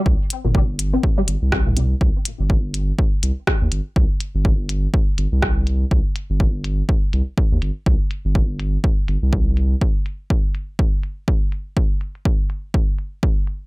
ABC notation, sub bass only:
X:1
M:4/4
L:1/16
Q:"Swing 16ths" 1/4=123
K:Cm
V:1 name="Sub bass" clef=bass
C,, z2 G,,,4 z3 G,,, C,,4 z | C,, z2 G,,,4 z3 C,, z2 E,, G,,, z | C,, z2 G,,,4 z3 G,,, C,,4 z | C,, z2 G,,,4 z3 C,, z2 E,, G,,, z |
C,, z2 G,,,4 z3 G,,, C,,4 z | z16 | z16 |]